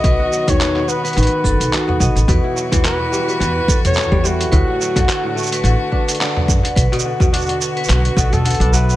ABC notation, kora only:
X:1
M:4/4
L:1/16
Q:"Swing 16ths" 1/4=107
K:Bm
V:1 name="Kora" clef=bass
B,, F F, ^D, B B,, B, B, D,4 z B, B,2 | B,, E F, E, F B,, G, G, E,4 z G, G,2 | A,, F F, D, A A,, A, A, D, z D z D, z2 D, | z B,, D, B,, D D4 z B,, B,, D, D F,2 |]